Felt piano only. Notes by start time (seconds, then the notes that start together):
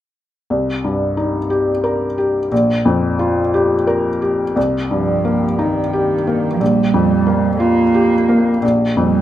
0.50 C2
0.84 G2
1.17 D#4
1.50 G4
1.84 A#4
2.18 G4
2.52 A#1
2.85 F2
3.19 F4
3.54 G4
3.87 A#4
4.22 G4
4.56 C2
4.91 G2
5.25 A#3
5.59 D#4
5.93 G4
6.27 A#3
6.60 A#1
6.94 F2
7.26 A#3
7.60 F4
7.94 G4
8.29 A#3
8.62 A#1
8.97 F2